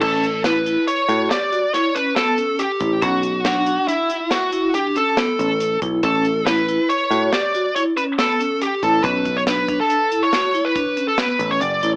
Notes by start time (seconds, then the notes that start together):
0.01 A1 C#4 A4, kick, crash
0.23 closed hi-hat
0.44 E4 B4, snare, closed hi-hat
0.66 E4, closed hi-hat
0.88 C#5, closed hi-hat
1.09 A2 F#4, closed hi-hat
1.30 G4 D5, snare, closed hi-hat
1.52 F#4, closed hi-hat
1.74 E4 C#5, snare, closed hi-hat
1.95 C#4 B4, closed hi-hat
2.16 B3 A4, snare, closed hi-hat
2.38 C#4, closed hi-hat
2.59 G4, closed hi-hat
2.80 A1 E4, kick, closed hi-hat
3.02 B1 C#4 F#4, kick, closed hi-hat
3.23 closed hi-hat
3.45 D4 F#4, snare, closed hi-hat
3.66 D4, closed hi-hat
3.88 E4, closed hi-hat
4.10 E4, closed hi-hat
4.31 F#4, snare, closed hi-hat
4.52 E4, closed hi-hat
4.74 D4 G4, closed hi-hat
4.96 C#4 A4, closed hi-hat
5.17 B3, snare, closed hi-hat
5.39 A1 C#4, closed hi-hat
5.60 closed hi-hat
5.82 B1 E4, kick, closed hi-hat
6.03 A1 C#4 A4, kick, closed hi-hat
6.25 closed hi-hat
6.46 E4 B4, snare, closed hi-hat
6.68 E4, closed hi-hat
6.89 C#5, closed hi-hat
7.11 A2 F#4, closed hi-hat
7.33 G4 D5, snare, closed hi-hat
7.54 F#4, closed hi-hat
7.76 E4 C#5, closed hi-hat
7.97 C#4 B4, closed hi-hat
8.18 B3 A4, snare, closed hi-hat
8.40 C#4, closed hi-hat
8.61 G4, closed hi-hat
8.83 A1 E4 A4, kick, closed hi-hat
9.04 B1 C#4 B4, kick, closed hi-hat
9.26 kick, closed hi-hat
9.37 C#5
9.47 D4 B4, snare, closed hi-hat
9.68 D4, kick, closed hi-hat
9.81 A4
9.90 closed hi-hat
10.12 E4, closed hi-hat
10.23 C#5
10.33 F#4, snare, closed hi-hat
10.54 E4, closed hi-hat
10.65 B4
10.75 D4, kick, closed hi-hat
10.97 C#4, closed hi-hat
11.08 A4
11.18 B3 B4, snare, closed hi-hat
11.39 A1 C#4, closed hi-hat
11.51 C#5
11.61 F#1 D5, closed hi-hat
11.83 A1 E4, closed hi-hat